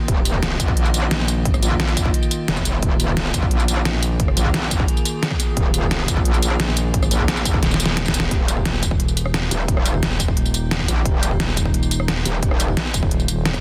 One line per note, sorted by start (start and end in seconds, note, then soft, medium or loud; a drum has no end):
0.00 8.27 D#3 medium
0.00 8.27 A#3 medium
0.00 8.27 F4 medium
0.00 2.80 D#5 medium
0.08 0.58 D#1 loud
0.08 kick loud
0.08 closed hi-hat medium
0.25 closed hi-hat medium
0.25 tambourine medium
0.34 kick medium
0.43 snare loud
0.43 closed hi-hat medium
0.60 1.10 A#1 loud
0.60 kick loud
0.60 closed hi-hat medium
0.60 tambourine medium
0.68 kick loud
0.77 closed hi-hat medium
0.86 tambourine soft
0.94 closed hi-hat loud
0.94 tambourine medium
1.03 cross-stick soft
1.11 1.61 A#1 loud
1.11 snare loud
1.11 closed hi-hat medium
1.28 closed hi-hat medium
1.28 tambourine medium
1.45 kick loud
1.45 closed hi-hat medium
1.54 cross-stick medium
1.54 tambourine soft
1.63 2.13 A#1 loud
1.63 closed hi-hat medium
1.63 tambourine medium
1.71 kick medium
1.80 snare loud
1.80 closed hi-hat medium
1.88 tambourine soft
1.97 kick loud
1.97 closed hi-hat medium
1.97 tambourine medium
2.05 kick loud
2.14 closed hi-hat medium
2.23 tambourine soft
2.31 closed hi-hat medium
2.31 tambourine medium
2.48 2.81 F1 loud
2.48 snare loud
2.48 closed hi-hat medium
2.57 kick medium
2.57 cross-stick soft
2.57 snare soft
2.57 tambourine soft
2.65 closed hi-hat medium
2.65 tambourine medium
2.83 3.33 D#1 loud
2.83 8.29 G#4 medium
2.83 kick loud
2.83 closed hi-hat medium
3.00 closed hi-hat medium
3.00 tambourine medium
3.08 kick medium
3.17 snare loud
3.17 closed hi-hat medium
3.34 3.84 A#1 loud
3.34 kick loud
3.34 closed hi-hat medium
3.34 tambourine medium
3.43 kick loud
3.51 closed hi-hat medium
3.60 tambourine soft
3.68 closed hi-hat medium
3.68 tambourine medium
3.77 cross-stick soft
3.85 4.36 A#1 loud
3.85 snare loud
3.85 closed hi-hat medium
4.03 closed hi-hat medium
4.03 tambourine medium
4.20 kick loud
4.20 closed hi-hat medium
4.28 cross-stick medium
4.37 4.87 A#1 loud
4.37 closed hi-hat loud
4.37 tambourine medium
4.45 kick medium
4.54 snare loud
4.54 closed hi-hat medium
4.71 kick loud
4.71 closed hi-hat medium
4.71 tambourine medium
4.80 kick loud
4.88 closed hi-hat medium
4.97 tambourine soft
5.05 closed hi-hat medium
5.05 tambourine medium
5.23 snare loud
5.23 closed hi-hat medium
5.31 kick medium
5.31 cross-stick soft
5.31 snare soft
5.40 closed hi-hat loud
5.40 tambourine medium
5.57 6.07 D#1 loud
5.57 kick loud
5.57 closed hi-hat medium
5.74 closed hi-hat loud
5.74 tambourine medium
5.83 kick medium
5.91 snare loud
5.91 closed hi-hat medium
6.08 6.58 A#1 loud
6.08 kick loud
6.08 closed hi-hat loud
6.08 tambourine medium
6.17 kick loud
6.25 closed hi-hat medium
6.34 tambourine soft
6.43 closed hi-hat loud
6.43 tambourine medium
6.51 cross-stick soft
6.60 7.10 A#1 loud
6.60 snare loud
6.60 closed hi-hat medium
6.77 closed hi-hat loud
6.77 tambourine medium
6.94 kick loud
6.94 closed hi-hat medium
7.03 cross-stick medium
7.03 tambourine soft
7.11 7.61 A#1 loud
7.11 closed hi-hat loud
7.11 tambourine medium
7.20 kick medium
7.28 snare loud
7.28 closed hi-hat medium
7.37 tambourine soft
7.45 kick loud
7.45 closed hi-hat loud
7.45 tambourine medium
7.54 kick loud
7.63 8.13 D#1 loud
7.63 snare medium
7.63 closed hi-hat medium
7.71 snare medium
7.71 tambourine soft
7.80 closed hi-hat loud
7.80 tambourine medium
7.86 snare medium
7.97 snare medium
7.97 closed hi-hat medium
8.05 kick medium
8.05 snare loud
8.05 tambourine soft
8.14 8.30 D#1 loud
8.14 closed hi-hat loud
8.14 tambourine medium
8.20 snare loud
8.31 8.64 D#1 loud
8.31 13.61 D#3 medium
8.31 13.61 A#3 medium
8.31 13.61 D#4 medium
8.31 kick loud
8.31 closed hi-hat medium
8.48 closed hi-hat loud
8.48 tambourine medium
8.57 kick medium
8.65 9.50 D#1 loud
8.65 snare loud
8.65 closed hi-hat medium
8.83 kick loud
8.83 closed hi-hat loud
8.83 tambourine medium
8.91 kick loud
9.00 closed hi-hat medium
9.08 tambourine soft
9.17 closed hi-hat loud
9.17 tambourine medium
9.26 cross-stick medium
9.34 snare loud
9.34 closed hi-hat medium
9.51 9.67 D#1 loud
9.51 closed hi-hat loud
9.51 tambourine medium
9.68 10.01 D#1 loud
9.68 kick loud
9.68 closed hi-hat medium
9.77 cross-stick medium
9.86 closed hi-hat loud
9.86 tambourine medium
9.94 kick medium
10.03 10.87 D#1 loud
10.03 snare loud
10.03 closed hi-hat medium
10.20 kick loud
10.20 closed hi-hat loud
10.20 tambourine medium
10.28 kick loud
10.37 closed hi-hat medium
10.46 tambourine soft
10.54 closed hi-hat loud
10.54 tambourine medium
10.71 snare loud
10.71 closed hi-hat medium
10.80 kick medium
10.80 cross-stick soft
10.88 11.04 A#1 loud
10.88 closed hi-hat loud
10.88 tambourine medium
11.05 11.38 D#1 loud
11.05 kick loud
11.05 closed hi-hat medium
11.23 closed hi-hat medium
11.23 tambourine medium
11.31 kick medium
11.40 12.24 D#1 loud
11.40 snare loud
11.40 closed hi-hat medium
11.57 kick loud
11.57 closed hi-hat medium
11.57 tambourine medium
11.65 kick loud
11.74 closed hi-hat medium
11.83 tambourine soft
11.91 closed hi-hat medium
11.91 tambourine medium
12.00 cross-stick soft
12.08 snare loud
12.08 closed hi-hat medium
12.25 12.41 D#1 loud
12.25 closed hi-hat medium
12.25 tambourine medium
12.43 12.76 D#1 loud
12.43 kick loud
12.43 closed hi-hat medium
12.51 cross-stick medium
12.60 closed hi-hat medium
12.60 tambourine medium
12.68 kick medium
12.77 snare loud
12.77 closed hi-hat medium
12.94 13.27 D#1 loud
12.94 kick loud
12.94 closed hi-hat medium
12.94 tambourine medium
13.03 kick loud
13.11 closed hi-hat medium
13.20 tambourine soft
13.28 13.61 D#1 loud
13.28 closed hi-hat medium
13.28 tambourine medium
13.45 snare loud
13.45 closed hi-hat medium
13.54 kick medium
13.54 cross-stick soft
13.54 snare soft
13.54 tambourine soft